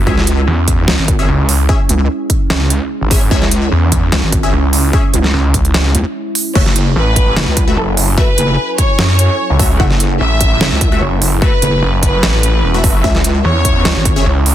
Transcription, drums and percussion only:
0.07 kick
0.18 snare
0.27 closed hi-hat
0.68 kick, closed hi-hat
0.88 snare
1.08 kick, closed hi-hat
1.49 open hi-hat
1.69 kick
1.89 closed hi-hat
2.30 kick, closed hi-hat
2.50 snare
2.70 closed hi-hat
3.11 kick, open hi-hat
3.31 kick
3.42 snare
3.51 closed hi-hat
3.92 kick, closed hi-hat
4.12 snare
4.32 kick, closed hi-hat
4.73 open hi-hat
4.93 kick
5.14 closed hi-hat
5.24 snare
5.54 kick, closed hi-hat
5.65 closed hi-hat
5.74 snare
5.95 closed hi-hat
6.35 open hi-hat
6.55 kick, crash
6.66 snare
6.76 closed hi-hat
7.16 kick, closed hi-hat
7.37 snare
7.57 kick, closed hi-hat
7.97 open hi-hat
8.18 kick
8.38 closed hi-hat
8.78 kick, closed hi-hat
8.99 snare
9.19 closed hi-hat
9.59 kick, open hi-hat
9.80 kick
9.91 snare
10.00 closed hi-hat
10.41 kick, closed hi-hat
10.61 snare
10.81 kick, closed hi-hat
11.22 open hi-hat
11.42 kick
11.62 closed hi-hat
12.03 kick, closed hi-hat
12.23 snare
12.43 closed hi-hat
12.84 kick, open hi-hat
13.04 kick
13.15 snare
13.24 closed hi-hat
13.65 kick, closed hi-hat
13.85 snare
14.05 kick, closed hi-hat
14.46 open hi-hat

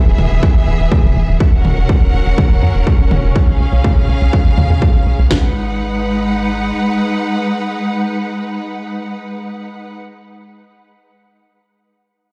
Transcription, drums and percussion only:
0.18 mid tom
0.43 kick
0.92 kick, mid tom
1.40 kick
1.65 mid tom
1.89 kick
2.38 kick, mid tom
2.87 kick
3.11 mid tom
3.36 kick
3.84 kick, mid tom
4.33 kick
4.58 mid tom
4.82 kick
5.31 kick, snare

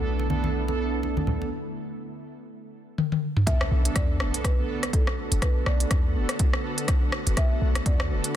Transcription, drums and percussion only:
0.19 muted conga
0.30 high conga
0.44 high conga
0.68 muted conga
1.03 muted conga
1.17 high conga
1.27 low conga
1.42 muted conga
2.98 high tom
3.12 high tom
3.37 mid tom
3.47 kick, closed hi-hat
3.61 cross-stick
3.85 closed hi-hat
3.96 kick, cross-stick, closed hi-hat
4.20 cross-stick
4.34 closed hi-hat
4.44 kick, cross-stick, closed hi-hat
4.83 cross-stick, closed hi-hat
4.93 kick, closed hi-hat
5.07 cross-stick
5.32 closed hi-hat
5.42 kick, cross-stick, closed hi-hat
5.66 cross-stick
5.80 closed hi-hat
5.91 kick, cross-stick, closed hi-hat
6.29 cross-stick, closed hi-hat
6.39 kick, closed hi-hat
6.53 cross-stick
6.78 closed hi-hat
6.88 kick, cross-stick, closed hi-hat
7.12 cross-stick
7.27 closed hi-hat
7.37 kick, cross-stick, closed hi-hat
7.75 cross-stick, closed hi-hat
7.86 kick, closed hi-hat
8.00 cross-stick
8.24 closed hi-hat

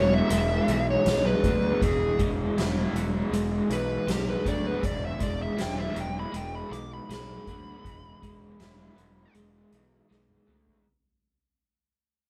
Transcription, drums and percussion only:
0.30 closed hi-hat
0.68 closed hi-hat
1.06 snare, closed hi-hat
1.44 kick, closed hi-hat
1.82 kick, closed hi-hat
2.19 kick, closed hi-hat
2.58 snare, closed hi-hat
2.96 closed hi-hat
3.33 closed hi-hat
3.70 closed hi-hat
4.08 snare, closed hi-hat
4.46 kick, closed hi-hat
4.83 kick, closed hi-hat
5.20 kick, closed hi-hat
5.58 snare, closed hi-hat
5.96 closed hi-hat
6.34 closed hi-hat
6.73 closed hi-hat
7.10 snare, closed hi-hat
7.47 kick, closed hi-hat
7.85 kick, closed hi-hat
8.23 kick, closed hi-hat
8.60 snare, closed hi-hat
8.98 closed hi-hat
9.34 closed hi-hat
9.72 closed hi-hat
10.11 snare
10.29 high tom
10.48 mid tom
10.67 floor tom

